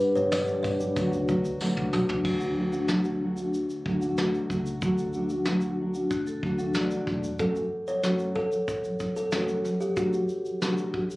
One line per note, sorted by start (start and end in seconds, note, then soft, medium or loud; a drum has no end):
0.00 0.16 G2 medium
0.00 0.16 D3 medium
0.00 0.16 G3 medium
0.00 0.16 B3 medium
0.00 0.16 D4 medium
0.00 0.14 G4 medium
0.00 0.17 B4 medium
0.00 tambourine soft
0.00 shaker medium
0.15 0.43 G1 medium
0.15 0.32 G3 soft
0.15 0.32 B3 medium
0.15 0.33 D4 soft
0.15 0.32 G4 medium
0.15 0.31 C#5 medium
0.15 shaker medium
0.32 0.64 G2 medium
0.32 0.64 D3 medium
0.32 0.62 G3 medium
0.32 0.63 B3 medium
0.32 0.65 D4 medium
0.32 0.65 G4 medium
0.32 0.62 D5 medium
0.32 snare loud
0.32 tambourine medium
0.32 shaker medium
0.47 shaker soft
0.63 0.91 G1 medium
0.63 0.80 G3 medium
0.63 0.81 B3 medium
0.63 0.80 D4 medium
0.63 0.79 G4 medium
0.63 1.56 D5 medium
0.63 kick medium
0.63 tambourine soft
0.63 shaker soft
0.80 0.97 G3 soft
0.80 0.97 B3 soft
0.80 0.97 D4 soft
0.80 0.96 G4 medium
0.80 shaker medium
0.96 1.10 D2 loud
0.96 1.13 D3 medium
0.96 1.13 F#3 medium
0.96 1.13 A3 medium
0.96 1.14 D4 medium
0.96 1.12 F#4 medium
0.96 kick loud
0.96 tambourine soft
0.96 shaker medium
1.13 1.26 C#2 medium
1.13 1.28 A3 soft
1.13 1.29 D4 soft
1.13 1.29 F#4 medium
1.13 shaker soft
1.28 1.42 D2 medium
1.28 1.61 F#3 medium
1.28 1.61 A3 medium
1.28 1.61 D4 medium
1.28 1.62 F#4 medium
1.28 kick medium
1.28 shaker medium
1.45 1.58 D2 medium
1.45 shaker medium
1.61 1.93 D3 medium
1.61 1.91 F#3 medium
1.61 1.92 A3 medium
1.61 1.93 D4 medium
1.61 1.94 F#4 medium
1.61 snare medium
1.61 tambourine medium
1.77 1.90 C#2 medium
1.77 high tom medium
1.92 2.06 B1 medium
1.92 2.09 F#3 medium
1.92 2.09 A3 medium
1.92 2.09 D4 medium
1.92 2.07 F#4 medium
1.92 mid tom medium
1.92 tambourine soft
2.08 2.22 C#2 medium
2.08 2.24 A3 soft
2.08 2.24 D4 soft
2.08 2.25 F#4 medium
2.08 floor tom medium
2.24 3.65 D2 medium
2.24 2.40 D3 medium
2.24 2.41 F#3 medium
2.24 2.41 A3 medium
2.24 2.40 D4 medium
2.24 2.39 F#4 medium
2.24 kick loud
2.24 crash medium
2.40 2.56 A3 soft
2.40 2.57 D4 soft
2.40 2.57 F#4 medium
2.40 shaker soft
2.56 2.73 F#3 medium
2.56 2.73 A3 medium
2.56 2.73 D4 medium
2.56 2.71 F#4 medium
2.72 2.89 A3 soft
2.72 2.90 D4 medium
2.72 2.89 F#4 medium
2.72 shaker soft
2.88 3.05 D3 medium
2.88 3.06 F#3 medium
2.88 3.06 A3 medium
2.88 3.05 D4 medium
2.88 3.03 F#4 medium
2.88 snare loud
2.88 shaker medium
3.04 3.21 A3 soft
3.04 3.22 D4 soft
3.04 3.21 F#4 soft
3.04 shaker soft
3.21 3.37 F#3 medium
3.21 3.38 A3 medium
3.21 3.37 D4 medium
3.21 3.35 F#4 medium
3.37 3.86 A3 soft
3.37 3.86 D4 medium
3.37 3.85 F#4 medium
3.37 shaker medium
3.54 shaker medium
3.70 shaker soft
3.85 4.38 D2 medium
3.85 4.02 F#3 medium
3.85 4.02 A3 medium
3.85 4.02 D4 medium
3.85 4.00 F#4 medium
3.85 kick medium
4.01 4.18 A3 soft
4.01 4.18 D4 soft
4.01 4.17 F#4 medium
4.01 shaker medium
4.17 4.50 D3 medium
4.17 4.48 F#3 medium
4.17 4.50 A3 medium
4.17 4.51 D4 medium
4.17 4.51 F#4 medium
4.17 snare loud
4.17 shaker medium
4.34 shaker soft
4.50 4.76 C#2 medium
4.50 4.82 F#3 medium
4.50 4.82 A3 medium
4.50 4.83 D4 medium
4.50 4.83 F#4 medium
4.50 kick medium
4.50 shaker soft
4.66 shaker medium
4.82 6.23 D2 medium
4.82 5.14 D3 medium
4.82 5.13 F#3 medium
4.82 5.14 A3 medium
4.82 5.15 D4 medium
4.82 5.16 F#4 medium
4.82 kick medium
4.82 shaker medium
4.98 shaker soft
5.13 5.30 F#3 medium
5.13 5.31 A3 medium
5.13 5.31 D4 medium
5.13 5.29 F#4 medium
5.13 shaker soft
5.29 5.47 A3 soft
5.29 5.47 D4 medium
5.29 5.46 F#4 medium
5.29 shaker soft
5.45 5.63 D3 medium
5.45 5.63 F#3 medium
5.45 5.63 A3 medium
5.45 5.63 D4 medium
5.45 5.61 F#4 medium
5.45 snare loud
5.45 shaker medium
5.61 5.79 D4 soft
5.61 5.78 F#4 medium
5.61 shaker soft
5.65 5.79 A3 soft
5.79 5.95 F#3 medium
5.79 5.95 A3 medium
5.79 5.95 D4 medium
5.79 5.94 F#4 medium
5.94 6.43 A3 soft
5.94 6.44 D4 medium
5.94 6.43 F#4 medium
5.94 shaker medium
6.11 6.27 A3 soft
6.11 6.26 F#4 medium
6.11 kick medium
6.11 shaker medium
6.27 6.42 A4 medium
6.27 shaker soft
6.43 6.96 D2 medium
6.43 6.59 F#3 medium
6.43 6.59 A3 medium
6.43 6.60 A3 medium
6.43 6.59 D4 medium
6.43 6.58 F#4 medium
6.43 6.57 F#4 medium
6.43 kick medium
6.58 6.75 A3 soft
6.58 6.76 D4 soft
6.58 6.75 F#4 medium
6.58 6.74 A4 medium
6.58 shaker soft
6.74 7.07 D3 medium
6.74 7.05 F#3 medium
6.74 7.07 A3 medium
6.74 7.08 D4 medium
6.74 6.91 F#4 medium
6.74 7.08 F#4 medium
6.74 6.90 D5 medium
6.74 snare medium
6.74 shaker medium
6.91 7.38 F#4 soft
6.91 7.38 D5 medium
6.91 shaker soft
7.06 7.33 E1 medium
7.06 7.39 F#3 medium
7.06 7.40 A3 medium
7.06 7.40 D4 medium
7.06 7.40 F#4 medium
7.06 kick medium
7.06 snare soft
7.24 shaker medium
7.39 7.55 F#2 medium
7.39 7.56 C#3 medium
7.39 7.56 F#3 medium
7.39 7.56 A3 medium
7.39 7.56 C#4 medium
7.39 7.56 F#4 medium
7.39 7.89 A4 medium
7.39 kick medium
7.39 shaker medium
7.56 7.81 F#2 soft
7.56 7.82 C#3 soft
7.56 7.83 F#3 soft
7.56 shaker soft
7.88 8.03 F#2 soft
7.88 8.03 C#3 soft
7.88 8.03 F#3 soft
7.88 8.37 C#5 medium
7.88 shaker soft
8.03 8.35 F#2 medium
8.03 8.36 C#3 medium
8.03 8.36 F#3 medium
8.03 8.37 A3 medium
8.03 8.37 C#4 medium
8.03 8.37 F#4 medium
8.03 snare medium
8.03 shaker medium
8.19 shaker soft
8.35 8.51 F#2 soft
8.35 8.52 C#3 medium
8.35 8.54 F#3 medium
8.35 9.15 A4 medium
8.35 kick medium
8.52 8.78 F#2 soft
8.52 8.79 C#3 soft
8.52 8.79 F#3 soft
8.52 shaker medium
8.68 kick medium
8.68 shaker medium
8.84 8.99 F#2 soft
8.84 9.00 C#3 soft
8.84 9.01 F#3 soft
8.84 shaker soft
9.00 9.15 F#2 medium
9.00 9.17 C#3 soft
9.00 9.18 F#3 medium
9.00 kick medium
9.00 shaker soft
9.16 9.32 F#2 soft
9.16 9.32 C#3 soft
9.16 9.33 F#3 soft
9.16 9.31 A4 medium
9.16 shaker medium
9.32 9.64 F#2 medium
9.32 9.65 C#3 medium
9.32 9.65 F#3 medium
9.32 9.65 A3 medium
9.32 9.66 C#4 medium
9.32 9.66 F#4 medium
9.32 9.82 A4 medium
9.32 snare medium
9.32 shaker medium
9.48 shaker soft
9.64 9.80 F#2 soft
9.64 9.81 C#3 medium
9.64 snare soft
9.64 shaker soft
9.68 9.83 F#3 medium
9.81 9.97 F#2 soft
9.81 9.97 C#3 soft
9.81 9.97 F#3 soft
9.81 9.97 G4 medium
9.81 shaker medium
9.96 10.13 D3 medium
9.96 10.14 F#3 medium
9.96 10.14 A3 medium
9.96 10.14 D4 medium
9.96 11.16 F#4 medium
9.96 10.14 F#4 medium
9.96 kick medium
9.96 shaker medium
10.13 10.40 D3 soft
10.13 shaker soft
10.18 10.41 F#3 soft
10.29 shaker soft
10.45 10.61 D3 soft
10.45 shaker soft
10.50 10.62 F#3 soft
10.62 10.93 D3 medium
10.62 10.94 F#3 medium
10.62 10.95 A3 medium
10.62 10.95 D4 medium
10.62 10.95 F#4 medium
10.62 snare medium
10.62 shaker medium
10.77 shaker soft
10.94 11.10 D3 medium
10.94 11.12 F#3 medium
10.94 kick medium
11.10 11.16 D3 soft
11.10 shaker medium